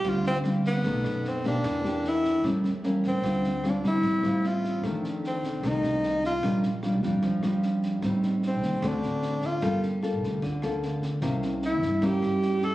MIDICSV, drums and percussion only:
0, 0, Header, 1, 2, 480
1, 0, Start_track
1, 0, Key_signature, -1, "minor"
1, 0, Tempo, 398936
1, 61, Time_signature, 4, 2, 24, 8
1, 15340, End_track
2, 0, Start_track
2, 0, Title_t, "Drums"
2, 57, Note_on_c, 9, 36, 56
2, 58, Note_on_c, 9, 37, 55
2, 58, Note_on_c, 9, 38, 21
2, 177, Note_off_c, 9, 36, 0
2, 178, Note_off_c, 9, 37, 0
2, 178, Note_off_c, 9, 38, 0
2, 299, Note_on_c, 9, 38, 23
2, 420, Note_off_c, 9, 38, 0
2, 528, Note_on_c, 9, 37, 53
2, 528, Note_on_c, 9, 38, 23
2, 649, Note_off_c, 9, 37, 0
2, 649, Note_off_c, 9, 38, 0
2, 775, Note_on_c, 9, 36, 23
2, 776, Note_on_c, 9, 38, 25
2, 895, Note_off_c, 9, 36, 0
2, 897, Note_off_c, 9, 38, 0
2, 1013, Note_on_c, 9, 38, 20
2, 1015, Note_on_c, 9, 36, 53
2, 1133, Note_off_c, 9, 38, 0
2, 1135, Note_off_c, 9, 36, 0
2, 1256, Note_on_c, 9, 37, 50
2, 1256, Note_on_c, 9, 38, 21
2, 1377, Note_off_c, 9, 37, 0
2, 1377, Note_off_c, 9, 38, 0
2, 1500, Note_on_c, 9, 38, 23
2, 1620, Note_off_c, 9, 38, 0
2, 1736, Note_on_c, 9, 36, 20
2, 1737, Note_on_c, 9, 38, 22
2, 1856, Note_off_c, 9, 36, 0
2, 1858, Note_off_c, 9, 38, 0
2, 1977, Note_on_c, 9, 36, 60
2, 1977, Note_on_c, 9, 37, 57
2, 1977, Note_on_c, 9, 38, 23
2, 2097, Note_off_c, 9, 36, 0
2, 2098, Note_off_c, 9, 37, 0
2, 2098, Note_off_c, 9, 38, 0
2, 2224, Note_on_c, 9, 38, 22
2, 2344, Note_off_c, 9, 38, 0
2, 2458, Note_on_c, 9, 38, 24
2, 2579, Note_off_c, 9, 38, 0
2, 2698, Note_on_c, 9, 36, 24
2, 2701, Note_on_c, 9, 38, 22
2, 2819, Note_off_c, 9, 36, 0
2, 2822, Note_off_c, 9, 38, 0
2, 2938, Note_on_c, 9, 36, 52
2, 2939, Note_on_c, 9, 37, 51
2, 2939, Note_on_c, 9, 38, 22
2, 3058, Note_off_c, 9, 36, 0
2, 3059, Note_off_c, 9, 37, 0
2, 3059, Note_off_c, 9, 38, 0
2, 3180, Note_on_c, 9, 38, 21
2, 3300, Note_off_c, 9, 38, 0
2, 3409, Note_on_c, 9, 38, 22
2, 3530, Note_off_c, 9, 38, 0
2, 3655, Note_on_c, 9, 36, 22
2, 3655, Note_on_c, 9, 38, 23
2, 3775, Note_off_c, 9, 36, 0
2, 3776, Note_off_c, 9, 38, 0
2, 3896, Note_on_c, 9, 36, 56
2, 3898, Note_on_c, 9, 37, 52
2, 3898, Note_on_c, 9, 38, 21
2, 4016, Note_off_c, 9, 36, 0
2, 4018, Note_off_c, 9, 37, 0
2, 4018, Note_off_c, 9, 38, 0
2, 4136, Note_on_c, 9, 38, 21
2, 4256, Note_off_c, 9, 38, 0
2, 4377, Note_on_c, 9, 37, 51
2, 4377, Note_on_c, 9, 38, 19
2, 4497, Note_off_c, 9, 37, 0
2, 4497, Note_off_c, 9, 38, 0
2, 4616, Note_on_c, 9, 36, 22
2, 4618, Note_on_c, 9, 38, 22
2, 4736, Note_off_c, 9, 36, 0
2, 4738, Note_off_c, 9, 38, 0
2, 4851, Note_on_c, 9, 38, 20
2, 4854, Note_on_c, 9, 36, 50
2, 4971, Note_off_c, 9, 38, 0
2, 4975, Note_off_c, 9, 36, 0
2, 5093, Note_on_c, 9, 37, 51
2, 5093, Note_on_c, 9, 38, 19
2, 5213, Note_off_c, 9, 37, 0
2, 5213, Note_off_c, 9, 38, 0
2, 5336, Note_on_c, 9, 38, 23
2, 5456, Note_off_c, 9, 38, 0
2, 5578, Note_on_c, 9, 36, 20
2, 5583, Note_on_c, 9, 38, 22
2, 5699, Note_off_c, 9, 36, 0
2, 5704, Note_off_c, 9, 38, 0
2, 5818, Note_on_c, 9, 37, 57
2, 5818, Note_on_c, 9, 38, 23
2, 5819, Note_on_c, 9, 36, 55
2, 5938, Note_off_c, 9, 37, 0
2, 5938, Note_off_c, 9, 38, 0
2, 5939, Note_off_c, 9, 36, 0
2, 6063, Note_on_c, 9, 38, 24
2, 6183, Note_off_c, 9, 38, 0
2, 6304, Note_on_c, 9, 38, 21
2, 6424, Note_off_c, 9, 38, 0
2, 6540, Note_on_c, 9, 36, 22
2, 6542, Note_on_c, 9, 38, 22
2, 6660, Note_off_c, 9, 36, 0
2, 6662, Note_off_c, 9, 38, 0
2, 6779, Note_on_c, 9, 37, 50
2, 6779, Note_on_c, 9, 38, 20
2, 6780, Note_on_c, 9, 36, 51
2, 6899, Note_off_c, 9, 37, 0
2, 6899, Note_off_c, 9, 38, 0
2, 6900, Note_off_c, 9, 36, 0
2, 7020, Note_on_c, 9, 38, 20
2, 7140, Note_off_c, 9, 38, 0
2, 7259, Note_on_c, 9, 38, 25
2, 7380, Note_off_c, 9, 38, 0
2, 7500, Note_on_c, 9, 36, 23
2, 7505, Note_on_c, 9, 38, 22
2, 7620, Note_off_c, 9, 36, 0
2, 7625, Note_off_c, 9, 38, 0
2, 7737, Note_on_c, 9, 37, 54
2, 7737, Note_on_c, 9, 38, 22
2, 7739, Note_on_c, 9, 36, 53
2, 7858, Note_off_c, 9, 37, 0
2, 7858, Note_off_c, 9, 38, 0
2, 7859, Note_off_c, 9, 36, 0
2, 7973, Note_on_c, 9, 38, 22
2, 8093, Note_off_c, 9, 38, 0
2, 8216, Note_on_c, 9, 37, 56
2, 8216, Note_on_c, 9, 38, 22
2, 8336, Note_off_c, 9, 37, 0
2, 8336, Note_off_c, 9, 38, 0
2, 8458, Note_on_c, 9, 36, 23
2, 8458, Note_on_c, 9, 38, 23
2, 8578, Note_off_c, 9, 36, 0
2, 8579, Note_off_c, 9, 38, 0
2, 8691, Note_on_c, 9, 38, 21
2, 8695, Note_on_c, 9, 36, 48
2, 8811, Note_off_c, 9, 38, 0
2, 8815, Note_off_c, 9, 36, 0
2, 8937, Note_on_c, 9, 37, 55
2, 8937, Note_on_c, 9, 38, 20
2, 9057, Note_off_c, 9, 37, 0
2, 9057, Note_off_c, 9, 38, 0
2, 9173, Note_on_c, 9, 38, 24
2, 9293, Note_off_c, 9, 38, 0
2, 9416, Note_on_c, 9, 36, 22
2, 9416, Note_on_c, 9, 38, 23
2, 9536, Note_off_c, 9, 36, 0
2, 9537, Note_off_c, 9, 38, 0
2, 9655, Note_on_c, 9, 37, 58
2, 9655, Note_on_c, 9, 38, 22
2, 9657, Note_on_c, 9, 36, 56
2, 9775, Note_off_c, 9, 37, 0
2, 9775, Note_off_c, 9, 38, 0
2, 9777, Note_off_c, 9, 36, 0
2, 9897, Note_on_c, 9, 38, 23
2, 10017, Note_off_c, 9, 38, 0
2, 10138, Note_on_c, 9, 38, 22
2, 10258, Note_off_c, 9, 38, 0
2, 10377, Note_on_c, 9, 38, 22
2, 10378, Note_on_c, 9, 36, 21
2, 10498, Note_off_c, 9, 36, 0
2, 10498, Note_off_c, 9, 38, 0
2, 10617, Note_on_c, 9, 37, 53
2, 10617, Note_on_c, 9, 38, 21
2, 10619, Note_on_c, 9, 36, 52
2, 10737, Note_off_c, 9, 37, 0
2, 10737, Note_off_c, 9, 38, 0
2, 10739, Note_off_c, 9, 36, 0
2, 10856, Note_on_c, 9, 38, 21
2, 10976, Note_off_c, 9, 38, 0
2, 11094, Note_on_c, 9, 38, 24
2, 11215, Note_off_c, 9, 38, 0
2, 11330, Note_on_c, 9, 38, 22
2, 11337, Note_on_c, 9, 36, 22
2, 11450, Note_off_c, 9, 38, 0
2, 11458, Note_off_c, 9, 36, 0
2, 11580, Note_on_c, 9, 36, 58
2, 11581, Note_on_c, 9, 37, 57
2, 11581, Note_on_c, 9, 38, 23
2, 11700, Note_off_c, 9, 36, 0
2, 11701, Note_off_c, 9, 37, 0
2, 11701, Note_off_c, 9, 38, 0
2, 11822, Note_on_c, 9, 38, 22
2, 11942, Note_off_c, 9, 38, 0
2, 12064, Note_on_c, 9, 37, 52
2, 12064, Note_on_c, 9, 38, 23
2, 12185, Note_off_c, 9, 37, 0
2, 12185, Note_off_c, 9, 38, 0
2, 12304, Note_on_c, 9, 36, 24
2, 12313, Note_on_c, 9, 38, 22
2, 12424, Note_off_c, 9, 36, 0
2, 12433, Note_off_c, 9, 38, 0
2, 12542, Note_on_c, 9, 36, 57
2, 12548, Note_on_c, 9, 38, 22
2, 12663, Note_off_c, 9, 36, 0
2, 12668, Note_off_c, 9, 38, 0
2, 12782, Note_on_c, 9, 37, 50
2, 12782, Note_on_c, 9, 38, 21
2, 12902, Note_off_c, 9, 37, 0
2, 12902, Note_off_c, 9, 38, 0
2, 13025, Note_on_c, 9, 38, 22
2, 13145, Note_off_c, 9, 38, 0
2, 13260, Note_on_c, 9, 38, 23
2, 13261, Note_on_c, 9, 36, 22
2, 13381, Note_off_c, 9, 36, 0
2, 13381, Note_off_c, 9, 38, 0
2, 13500, Note_on_c, 9, 36, 56
2, 13501, Note_on_c, 9, 37, 53
2, 13501, Note_on_c, 9, 38, 24
2, 13620, Note_off_c, 9, 36, 0
2, 13622, Note_off_c, 9, 37, 0
2, 13622, Note_off_c, 9, 38, 0
2, 13742, Note_on_c, 9, 38, 23
2, 13863, Note_off_c, 9, 38, 0
2, 13980, Note_on_c, 9, 38, 23
2, 14100, Note_off_c, 9, 38, 0
2, 14221, Note_on_c, 9, 36, 21
2, 14223, Note_on_c, 9, 38, 23
2, 14342, Note_off_c, 9, 36, 0
2, 14343, Note_off_c, 9, 38, 0
2, 14463, Note_on_c, 9, 36, 52
2, 14464, Note_on_c, 9, 37, 56
2, 14464, Note_on_c, 9, 38, 22
2, 14583, Note_off_c, 9, 36, 0
2, 14585, Note_off_c, 9, 37, 0
2, 14585, Note_off_c, 9, 38, 0
2, 14710, Note_on_c, 9, 38, 20
2, 14831, Note_off_c, 9, 38, 0
2, 14943, Note_on_c, 9, 38, 25
2, 15063, Note_off_c, 9, 38, 0
2, 15181, Note_on_c, 9, 36, 23
2, 15185, Note_on_c, 9, 38, 24
2, 15301, Note_off_c, 9, 36, 0
2, 15305, Note_off_c, 9, 38, 0
2, 15340, End_track
0, 0, End_of_file